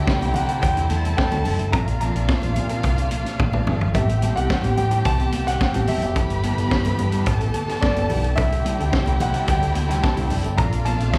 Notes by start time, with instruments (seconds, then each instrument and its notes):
Already playing: string section D3 A3 C4 E4, violin section G4 G5
0.07 tine electric piano C3 G3, clean electric guitar A3 D4 E4 A4, kick, snare
0.21 picked electric bass C2, tine electric piano A3 D4 E4, muted clean electric guitar stroke, closed hi-hat, high conga
0.34 picked electric bass C3, tine electric piano D4 E4, grand piano F#5, muted clean electric guitar stroke, closed hi-hat, muted conga, high conga, low conga
0.48 clean electric guitar A3 D4 E4 A4, closed hi-hat
0.62 picked electric bass E2, grand piano G5, kick, closed hi-hat
0.76 tine electric piano A3 D4 E4, muted clean electric guitar stroke, closed hi-hat
0.90 picked electric bass E2, clean electric guitar A3 D4 E4 A4, violin section A4 A5, closed hi-hat, high conga
1.04 tine electric piano C3 G3, muted clean electric guitar stroke, closed hi-hat
1.17 grand piano G5, muted clean electric guitar stroke, kick, snare, high conga
1.31 picked electric bass D2, tine electric piano A3 D4 E4, clean electric guitar A3 D4 E4 A4, closed hi-hat, high conga
1.45 picked electric bass F#1, tine electric piano C3 G3, clean electric guitar A3 D4 E4 A4, open hi-hat, muted conga, low conga
1.59 picked electric bass G1, tine electric piano A3 D4 E4, muted clean electric guitar stroke, closed hi-hat
1.72 picked electric bass A#1, string section C3 A#3 D4, clean electric guitar F3 C4 D4 A4, tine electric piano A3 C4 D4, violin section F4 F5, grand piano A#5, kick, closed hi-hat, low conga
1.88 muted clean electric guitar stroke, closed hi-hat
2.00 tine electric piano A#2 F3, clean electric guitar F3 C4 D4 A4, grand piano A#5, closed hi-hat, high conga
2.15 picked electric bass A#1, clean electric guitar F3 C4 D4 A4, tine electric piano A3 C4 D4, closed hi-hat
2.28 tine electric piano A#2 F3, clean electric guitar F3 C4 D4 A4, kick, snare
2.42 picked electric bass A#1, tine electric piano A3 C4 D4, muted clean electric guitar stroke, closed hi-hat, high conga
2.56 picked electric bass A#2, tine electric piano C4 D4, muted clean electric guitar stroke, closed hi-hat, muted conga, high conga, low conga
2.69 clean electric guitar F3 C4 D4 A4, closed hi-hat
2.83 picked electric bass C2, muted clean electric guitar stroke, kick, closed hi-hat, muted conga
2.97 tine electric piano A3 C4 D4, muted clean electric guitar stroke, closed hi-hat
3.11 tine electric piano A#2 F3, closed hi-hat, muted conga, high conga
3.25 tine electric piano A3 C4 D4, muted clean electric guitar stroke, snare, closed hi-hat
3.39 picked electric bass A#1, muted clean electric guitar stroke, kick, high tom, muted conga, high conga
3.53 clean electric guitar F3 C4 D4 A4, mid tom, high conga
3.67 picked electric bass G1, clean electric guitar F3 C4 D4 A4, tine electric piano A3 C4 D4, mid tom, muted conga, low conga
3.81 muted clean electric guitar stroke, floor tom
3.94 picked electric bass A1, string section E3 C4 G4, clean electric guitar G3 C4 E4 A4, tine electric piano B3 C4 G4, violin section G4 G5, grand piano E5, kick, closed hi-hat, low conga
4.08 muted clean electric guitar stroke, closed hi-hat
4.22 tine electric piano A2 E3, clean electric guitar G3 C4 E4 A4, closed hi-hat, muted conga, high conga
4.36 picked electric bass C2, clean electric guitar G3 C4 E4, tine electric piano B3 C4 G4, grand piano F#5, closed hi-hat
4.49 tine electric piano A2 E3, clean electric guitar G3 C4 E4 A4, kick, snare, muted conga
4.63 picked electric bass A1, tine electric piano B3 C4 G4, muted clean electric guitar stroke, closed hi-hat, high conga
4.77 picked electric bass A2, tine electric piano C4 G4, grand piano G5, muted clean electric guitar stroke, closed hi-hat, high conga, low conga
4.91 clean electric guitar G3 C4 E4 A4, closed hi-hat
5.05 picked electric bass C2, grand piano A5, muted clean electric guitar stroke, kick, closed hi-hat
5.19 tine electric piano B3 C4 G4, muted clean electric guitar stroke, closed hi-hat
5.32 picked electric bass C2, closed hi-hat, muted conga, high conga
5.46 tine electric piano A2 E3, grand piano F#5, muted clean electric guitar stroke, snare, closed hi-hat
5.60 muted clean electric guitar stroke, kick, snare, muted conga, high conga
5.74 picked electric bass A1, clean electric guitar G3 C4 E4 A4, tine electric piano B3 C4 G4, closed hi-hat, high conga
5.87 picked electric bass E1, tine electric piano A2 E3, clean electric guitar G3 C4 E4 A4, grand piano E5, open hi-hat, low conga
6.02 picked electric bass F#1, tine electric piano B3 C4 G4, muted clean electric guitar stroke, closed hi-hat
6.15 picked electric bass G1, string section E3 A3 B3, clean electric guitar G3 B3 E4 A4, tine electric piano B3 E4 A4, violin section B4 B5, kick, closed hi-hat, muted conga, low conga
6.30 muted clean electric guitar stroke, closed hi-hat
6.43 tine electric piano G2 D3, clean electric guitar G3 B3 E4 A4, closed hi-hat, high conga
6.57 picked electric bass G1, clean electric guitar G3 B3 E4 A4, tine electric piano B3 E4 A4, closed hi-hat
6.71 tine electric piano G2 D3, clean electric guitar G3 B3 E4 A4, kick, snare
6.85 picked electric bass G1, tine electric piano B3 E4 A4, muted clean electric guitar stroke, closed hi-hat, high conga
6.99 picked electric bass G2, tine electric piano E4 A4, muted clean electric guitar stroke, closed hi-hat, muted conga, high conga, low conga
7.12 clean electric guitar G3 B3 E4 A4, closed hi-hat
7.26 picked electric bass A1, violin section A4 A5, kick, closed hi-hat
7.40 tine electric piano B3 E4 A4, muted clean electric guitar stroke, closed hi-hat
7.54 tine electric piano G2 D3, closed hi-hat, muted conga, high conga
7.68 tine electric piano B3 E4 A4, muted clean electric guitar stroke, snare, closed hi-hat
7.81 picked electric bass G1, grand piano D5, muted clean electric guitar stroke, kick, snare, high conga
7.95 clean electric guitar G3 B3 E4 A4, closed hi-hat, high conga
8.09 picked electric bass B1, clean electric guitar G3 B3 E4 A4, tine electric piano B3 E4 A4, open hi-hat, muted conga, low conga
8.23 muted clean electric guitar stroke, closed hi-hat
8.36 picked electric bass C2, string section D3 C4 E4, clean electric guitar G3 D4 E4 A4, tine electric piano D4 E4 A4, violin section G4 G5, grand piano E5, kick, closed hi-hat, muted conga, low conga
8.51 muted clean electric guitar stroke, closed hi-hat
8.64 tine electric piano C3 G3, clean electric guitar G3 D4 E4 A4, closed hi-hat, muted conga, high conga
8.79 picked electric bass D2, clean electric guitar G3 D4 E4 A4, tine electric piano D4 E4 A4, closed hi-hat
8.92 tine electric piano C3 G3, clean electric guitar G3 D4 E4 A4, kick, snare
9.06 picked electric bass C2, tine electric piano D4 E4 A4, muted clean electric guitar stroke, closed hi-hat, high conga
9.20 picked electric bass C3, tine electric piano E4 A4, grand piano F#5, muted clean electric guitar stroke, closed hi-hat, high conga, low conga
9.34 clean electric guitar G3 D4 E4 A4, closed hi-hat
9.47 picked electric bass D2, clean electric guitar G3 D4 E4 A4, grand piano G5, kick, closed hi-hat
9.62 tine electric piano D4 E4 A4, muted clean electric guitar stroke, closed hi-hat
9.75 picked electric bass D2, muted clean electric guitar stroke, closed hi-hat, muted conga, high conga
9.89 tine electric piano C3 G3, clean electric guitar G3 D4 E4 A4, snare, closed hi-hat
10.03 grand piano A5, muted clean electric guitar stroke, kick, snare, muted conga, high conga
10.16 picked electric bass C2, clean electric guitar G3 D4 E4 A4, tine electric piano D4 E4 A4, closed hi-hat, high conga
10.30 picked electric bass F#1, tine electric piano C3 G3, clean electric guitar G3 D4 E4 A4, open hi-hat, muted conga, low conga
10.44 picked electric bass G1, tine electric piano D4 E4 A4, muted clean electric guitar stroke, closed hi-hat
10.57 picked electric bass A#1, string section C3 A#3 D4, clean electric guitar F3 C4 D4 A4, tine electric piano C4 D4 A4, violin section F4 F5, grand piano A#5, kick, closed hi-hat, muted conga, low conga
10.72 muted clean electric guitar stroke, closed hi-hat
10.85 tine electric piano A#2 F3, clean electric guitar F3 C4 D4 A4, grand piano A5, closed hi-hat, muted conga, high conga
11.00 picked electric bass A#1, tine electric piano C4 D4 A4, clean electric guitar C4 D4 A4, closed hi-hat
11.13 tine electric piano A#2 F3, clean electric guitar F3 C4 D4 A4, kick, snare, muted conga